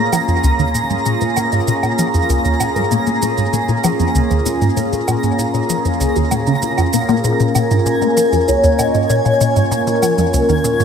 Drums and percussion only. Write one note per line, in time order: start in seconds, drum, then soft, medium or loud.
0.13 low woodblock medium
0.13 shaker medium
0.28 shaker soft
0.44 shaker medium
0.59 shaker soft
0.75 shaker medium
0.90 shaker soft
1.06 shaker medium
1.21 shaker soft
1.37 low woodblock medium
1.37 shaker medium
1.52 shaker soft
1.68 shaker medium
1.83 low woodblock medium
1.83 shaker soft
1.99 shaker medium
2.14 shaker soft
2.30 shaker medium
2.45 shaker soft
2.60 low woodblock medium
2.60 shaker medium
2.76 shaker soft
2.91 shaker medium
3.07 shaker soft
3.22 shaker medium
3.38 shaker soft
3.53 shaker medium
3.69 shaker soft
3.84 low woodblock medium
3.84 shaker medium
4.00 shaker soft
4.15 shaker medium
4.31 shaker soft
4.46 shaker medium
4.62 shaker soft
4.77 shaker medium
4.93 shaker soft
5.08 low woodblock medium
5.08 shaker medium
5.23 shaker soft
5.39 shaker medium
5.54 shaker soft
5.70 shaker medium
5.85 shaker soft
6.01 shaker medium
6.16 shaker soft
6.31 low woodblock medium
6.31 shaker medium
6.47 shaker soft
6.62 shaker medium
6.78 low woodblock medium
6.78 shaker soft
6.93 shaker medium
7.09 low woodblock medium
7.09 shaker soft
7.24 shaker medium
7.40 shaker soft
7.55 low woodblock medium
7.55 shaker medium
7.71 shaker soft
7.86 shaker medium
8.02 shaker soft
8.17 shaker medium
8.33 shaker soft
8.48 shaker medium
8.64 shaker soft
8.79 low woodblock medium
8.79 shaker medium
8.94 shaker soft
9.10 shaker medium
9.25 shaker soft
9.41 shaker medium
9.56 shaker soft
9.72 shaker medium
9.87 shaker soft
10.03 low woodblock medium
10.03 shaker loud
10.18 shaker soft
10.34 shaker medium
10.49 shaker soft
10.64 shaker medium
10.80 shaker soft